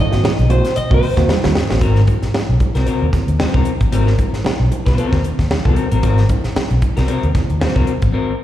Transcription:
Already playing: tine electric piano G#2 D#3
0.00 clean electric guitar D#5
0.11 tine electric piano A#3 C4 F#4, muted fingered electric bass stroke, snare, closed hi-hat
0.24 tine electric piano G#2 D#3, muted fingered electric bass stroke, snare, high conga
0.39 fingered electric bass B1, closed hi-hat
0.50 tine electric piano A#3 C4 F#4, clean electric guitar C5, closed hi-hat, muted conga
0.65 tine electric piano C4 F#4, snare, closed hi-hat
0.76 clean electric guitar D#5, muted fingered electric bass stroke, closed hi-hat
0.91 fingered electric bass C2, tine electric piano A#3 C4 F#4, clean electric guitar C5, kick
1.02 tine electric piano G#2 D#3, open hi-hat
1.17 fingered electric bass D#2, tine electric piano A#3 C4 F#4, kick, snare, closed hi-hat
1.29 muted fingered electric bass stroke, snare, high conga
1.43 fingered electric bass D#2, tine electric piano A#3 C4 F#4, snare, high conga
1.55 tine electric piano G#2 D#3, snare
1.69 fingered electric bass A1, tine electric piano A#3 C4 F#4, snare
1.81 fingered electric bass G#1, clean electric guitar C4 F#4 A#4, kick, closed hi-hat, muted conga
1.96 snare, closed hi-hat
2.07 kick, closed hi-hat, muted conga
2.22 muted fingered electric bass stroke, snare, closed hi-hat
2.34 snare, high conga
2.49 fingered electric bass B1
2.60 kick, closed hi-hat, muted conga
2.75 fingered electric bass C2, clean electric guitar C4 F#4 A#4, snare, closed hi-hat
2.86 clean electric guitar C4 F#4 A#4, muted fingered electric bass stroke, closed hi-hat
3.02 fingered electric bass D#2
3.13 kick, snare, closed hi-hat, muted conga, low conga
3.28 fingered electric bass D#2, closed hi-hat
3.39 clean electric guitar C4 F#4 C5, muted fingered electric bass stroke, snare, high conga
3.53 fingered electric bass C2, clean electric guitar C4 F#4 A#4, kick, high conga
3.65 closed hi-hat
3.81 fingered electric bass A1, kick, closed hi-hat
3.92 fingered electric bass G#1, clean electric guitar C4 F#4 A#4, closed hi-hat, muted conga
4.07 snare
4.19 kick, closed hi-hat, muted conga
4.33 muted fingered electric bass stroke, snare, closed hi-hat
4.44 muted fingered electric bass stroke, snare, high conga
4.60 fingered electric bass B1
4.72 closed hi-hat, muted conga
4.86 fingered electric bass C2, clean electric guitar C4 F#4 C5, kick, snare, closed hi-hat
4.98 clean electric guitar C4 F#4 A#4, muted fingered electric bass stroke, closed hi-hat
5.13 fingered electric bass D#2, kick, snare, closed hi-hat
5.24 closed hi-hat, muted conga
5.39 fingered electric bass D#2, kick, snare, closed hi-hat
5.51 muted fingered electric bass stroke, snare, high conga
5.65 fingered electric bass C2, clean electric guitar C4 F#4 A#4, kick, high conga
5.76 closed hi-hat
5.92 fingered electric bass A1, clean electric guitar C4 F#4 A#4, closed hi-hat
6.03 fingered electric bass G#1, clean electric guitar C4 F#4 A#4, kick, closed hi-hat, muted conga
6.18 snare, closed hi-hat
6.29 kick, closed hi-hat, muted conga
6.44 muted fingered electric bass stroke, snare, closed hi-hat
6.56 muted fingered electric bass stroke, snare, high conga
6.70 fingered electric bass B1, closed hi-hat
6.82 kick, closed hi-hat, muted conga
6.97 fingered electric bass C2, clean electric guitar C4 F#4 A#4, snare, closed hi-hat
7.08 clean electric guitar C4 F#4 A#4, muted fingered electric bass stroke, closed hi-hat
7.23 fingered electric bass D#2, closed hi-hat
7.35 kick, snare, closed hi-hat, muted conga, low conga
7.50 fingered electric bass D#2, closed hi-hat
7.60 clean electric guitar C4 F#4 C5, muted fingered electric bass stroke, snare, high conga
7.75 fingered electric bass C2, clean electric guitar C4 F#4 A#4, kick, high conga
7.87 closed hi-hat
8.02 fingered electric bass A1, kick, closed hi-hat
8.12 clean electric guitar C4 F#4 A#4

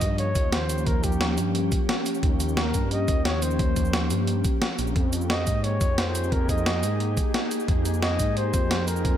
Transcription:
Already playing: ambient pad F3 A#3 C#4 G4, flugelhorn D#5
0.01 detuned saw bass G2, kick, closed hi-hat, shaker
0.18 flugelhorn C#5, closed hi-hat
0.35 detuned saw bass D#2, kick, closed hi-hat, shaker
0.53 flugelhorn C5, snare, closed hi-hat
0.70 closed hi-hat, shaker
0.78 shaker
0.87 flugelhorn A#4, kick, closed hi-hat
1.04 flugelhorn G4, kick, closed hi-hat, shaker
1.12 shaker
1.21 snare, closed hi-hat
1.38 detuned saw bass G2, closed hi-hat, shaker
1.55 closed hi-hat
1.72 kick, closed hi-hat, shaker
1.89 snare, closed hi-hat
2.06 closed hi-hat, shaker
2.15 shaker
2.23 detuned saw bass D#2, kick, closed hi-hat
2.40 closed hi-hat, shaker
2.49 shaker
2.57 flugelhorn A#4, snare, closed hi-hat
2.74 detuned saw bass G2, kick, closed hi-hat, shaker
2.91 flugelhorn D#5, closed hi-hat
3.08 detuned saw bass D#2, kick, closed hi-hat, shaker
3.25 flugelhorn C#5, snare, closed hi-hat
3.42 flugelhorn C5, closed hi-hat, shaker
3.51 shaker
3.59 kick, closed hi-hat
3.76 kick, closed hi-hat, shaker
3.85 shaker
3.93 snare, closed hi-hat
4.10 detuned saw bass G2, closed hi-hat, shaker
4.27 closed hi-hat
4.45 kick, closed hi-hat, shaker
4.62 snare, closed hi-hat
4.79 detuned saw bass A#1, closed hi-hat, shaker
4.87 shaker
4.96 detuned saw bass F2, ambient pad A#3 D#4 G4 G#4, kick, closed hi-hat
5.13 closed hi-hat, shaker
5.21 shaker
5.30 flugelhorn D#5, snare, closed hi-hat
5.47 detuned saw bass G#2, kick, closed hi-hat, shaker
5.64 flugelhorn C#5, closed hi-hat
5.81 detuned saw bass F2, kick, closed hi-hat, shaker
5.98 flugelhorn C5, snare, closed hi-hat
6.15 closed hi-hat, shaker
6.24 shaker
6.32 flugelhorn A#4, kick, closed hi-hat
6.49 flugelhorn D#5, kick, closed hi-hat, shaker
6.58 shaker
6.66 snare, closed hi-hat
6.83 detuned saw bass G#2, closed hi-hat, shaker
7.00 closed hi-hat
7.17 kick, closed hi-hat, shaker
7.34 snare, closed hi-hat
7.51 closed hi-hat, shaker
7.60 shaker
7.68 detuned saw bass F2, kick, closed hi-hat
7.85 closed hi-hat, shaker
7.94 shaker
8.03 flugelhorn D#5, snare, closed hi-hat
8.20 detuned saw bass G#2, kick, closed hi-hat, shaker
8.37 flugelhorn C5, closed hi-hat
8.54 detuned saw bass F2, kick, closed hi-hat, shaker
8.71 snare, closed hi-hat
8.88 flugelhorn A#4, closed hi-hat, shaker
8.96 shaker
9.05 kick, closed hi-hat

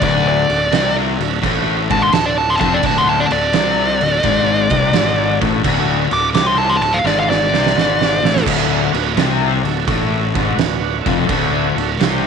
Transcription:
0.00 fingered electric bass D1, overdriven electric guitar D2, tonewheel organ D4 F#4 B4, lead electric guitar D5, kick, crash
0.28 lead electric guitar D5
0.48 fingered electric bass D1, overdriven electric guitar D2, tonewheel organ D4 F#4 A4, crash
0.71 fingered electric bass C2, overdriven electric guitar C3, tonewheel organ D4 F#4 A4, snare, crash
1.19 fingered electric bass D1, overdriven electric guitar D2, tonewheel organ D4 F#4 A4, crash
1.42 fingered electric bass A1, overdriven electric guitar A2, tonewheel organ D4 F#4 C5, kick, crash
1.88 fingered electric bass G#1, overdriven electric guitar G#2, tonewheel organ D4 F#4 A4, lead electric guitar A5, kick, crash
2.02 lead electric guitar C6
2.12 fingered electric bass D1, overdriven electric guitar D2, tonewheel organ D4 F#4 A4, lead electric guitar A5, snare, crash
2.26 lead electric guitar D5
2.38 lead electric guitar A5
2.50 lead electric guitar C6
2.60 fingered electric bass F1, overdriven electric guitar F2, tonewheel organ D4 F#4 A4, lead electric guitar A5, kick, crash
2.74 lead electric guitar D5
2.83 fingered electric bass D1, overdriven electric guitar D2, tonewheel organ D4 F#4 B4, lead electric guitar A5, kick, crash
2.98 lead electric guitar C6
3.09 lead electric guitar A5
3.20 lead electric guitar D5
3.29 fingered electric bass D1, overdriven electric guitar D2, tonewheel organ D4 F#4 A4, lead electric guitar D5, crash
3.53 fingered electric bass C2, overdriven electric guitar C3, tonewheel organ D4 F#4 A4, snare, crash
3.99 fingered electric bass D1, overdriven electric guitar D2, tonewheel organ D4 F#4 A4, crash
4.22 fingered electric bass G#1, overdriven electric guitar G#2, tonewheel organ D4 F#4 C5, kick, crash
4.70 fingered electric bass C2, overdriven electric guitar C3, tonewheel organ D4 F#4 B4, kick, crash
4.93 fingered electric bass G#1, overdriven electric guitar G#2, tonewheel organ D4 F#4 A4, snare, crash
5.41 fingered electric bass A1, overdriven electric guitar A2, tonewheel organ D4 F#4 A4, kick, crash
5.64 fingered electric bass D1, overdriven electric guitar D2, tonewheel organ D4 F#4 A4, kick, crash
6.11 fingered electric bass D1, overdriven electric guitar D2, tonewheel organ D4 F#4 A4, lead electric guitar D6, crash
6.34 fingered electric bass C2, overdriven electric guitar C3, tonewheel organ D4 F#4 A4, lead electric guitar D6, snare, crash
6.47 lead electric guitar C6
6.58 lead electric guitar A5
6.70 lead electric guitar C6
6.81 fingered electric bass D1, overdriven electric guitar D2, tonewheel organ D4 F#4 A4, lead electric guitar A5, crash
6.94 lead electric guitar F5
7.04 fingered electric bass G#1, overdriven electric guitar G#2, tonewheel organ D4 F#4 A4, lead electric guitar D5, snare
7.20 lead electric guitar F5
7.30 lead electric guitar D5, snare
7.51 fingered electric bass C2, overdriven electric guitar C3, tonewheel organ D4 F#4 C5, snare
7.66 snare
7.74 fingered electric bass G#1, overdriven electric guitar G#2, tonewheel organ D4 F#4 B4, snare
8.02 snare
8.22 fingered electric bass A1, overdriven electric guitar A2, tonewheel organ D4 F#4 A4, snare
8.36 snare
8.45 fingered electric bass D1, overdriven electric guitar D2, tonewheel organ D4 F#4 A4, kick, crash
8.91 fingered electric bass D1, overdriven electric guitar D2, tonewheel organ D4 F#4 B4, crash
9.14 fingered electric bass C2, overdriven electric guitar C3, tonewheel organ D4 F#4 A4, snare, crash
9.63 fingered electric bass D1, overdriven electric guitar D2, tonewheel organ D4 F#4 A4, crash
9.87 fingered electric bass A1, overdriven electric guitar A2, tonewheel organ D4 F#4 A4, kick, crash
10.34 fingered electric bass G#1, overdriven electric guitar G#2, tonewheel organ D4 F#4 A4, kick, crash
10.53 tonewheel organ D4 F#4 B4
10.57 fingered electric bass D1, overdriven electric guitar D2, snare, crash
11.02 tonewheel organ D4 F#4 A4
11.06 fingered electric bass F1, overdriven electric guitar F2, kick, crash
11.26 fingered electric bass D1, overdriven electric guitar D2, tonewheel organ D4 F#4 A4, kick, crash
11.74 fingered electric bass D1, overdriven electric guitar D2, tonewheel organ D4 F#4 A4, crash
11.98 fingered electric bass C2, overdriven electric guitar C3, tonewheel organ D4 F#4 C5, snare, crash

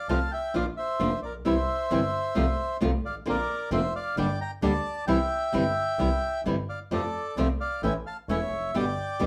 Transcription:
0.09 double bass C2, nylon-string guitar C3 F3 A3 C4 F4, bandoneon F5 A5
0.32 bandoneon E5 G5
0.54 double bass A#1, nylon-string guitar F3 A#3 D4 F4, bandoneon D5 F5
0.77 bandoneon C5 E5
0.99 double bass F1, nylon-string guitar F3 A#3 D4 F4
1.23 double bass A#1, bandoneon A#4 D5
1.45 double bass C2, nylon-string guitar C3 E3 G3 C4 E4, bandoneon C5 E5
1.90 double bass G1, nylon-string guitar C3 E3 G3 C4 E4
2.35 double bass C2, nylon-string guitar C3 F3 A3 C4 F4
2.81 double bass C2, nylon-string guitar C3 F3 A3 C4 F4
3.04 double bass G#1, bandoneon D5 F5
3.26 double bass A#1, nylon-string guitar D3 A#3 C4 F4, bandoneon A#4 D5
3.71 double bass F1, nylon-string guitar D3 A#3 C4 F4, bandoneon C5 E5
3.96 bandoneon D5 F5
4.17 double bass G1, nylon-string guitar D3 G3 A#3 D4 G4, bandoneon D5 G5
4.41 bandoneon G5 A#5
4.62 double bass D2, nylon-string guitar D3 G3 A#3 D4 G4, bandoneon D5 A5
5.07 double bass C2, nylon-string guitar C3 E3 G3 C4 E4, bandoneon E5 G5
5.53 double bass G1, nylon-string guitar C3 E3 G3 C4 E4
5.99 double bass C2, nylon-string guitar C3 E3 G3 C4 E4
6.45 double bass G1, nylon-string guitar C3 E3 G3 C4 E4
6.69 bandoneon D5 F5
6.91 double bass F2, nylon-string guitar C3 F3 A3 C4 F4, bandoneon A4 D5
7.37 double bass C2, nylon-string guitar C3 F3 A3 C4 F4, bandoneon C5 E5
7.61 bandoneon D5 F5
7.83 double bass A1, nylon-string guitar E3 A3 C#4 E4, bandoneon E5 G5
8.06 bandoneon F5 A5
8.29 double bass E1, nylon-string guitar E3 A3 C#4 E4, bandoneon C#5 E5
8.52 double bass F1
8.74 double bass G1, nylon-string guitar B2 D3 G3 B3 G4, bandoneon D5 G5
9.19 double bass D2, nylon-string guitar B2 D3 G3 B3 G4

